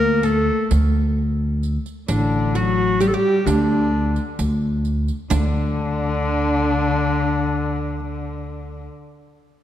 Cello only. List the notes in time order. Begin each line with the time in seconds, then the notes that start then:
Already playing: A#3
0.26 A3
2.09 D3
2.54 F#3
3.00 G3
3.15 G3
3.45 D3
5.30 D3